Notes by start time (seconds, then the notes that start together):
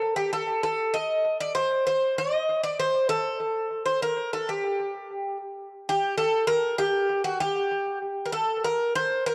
Already playing: A4
0.16 G4
0.33 A4
0.63 A4
0.94 D#5
1.41 D5
1.55 C5
1.87 C5
2.18 D#5
2.63 D5
2.80 C5
3.09 A4
3.85 C5
4.02 A#4
4.33 A4
4.49 G4
5.89 G4
6.18 A4
6.47 A#4
6.78 G4
7.24 F#4
7.40 G4
8.26 A#4
8.32 A4
8.64 A#4
8.95 C5
9.26 A#4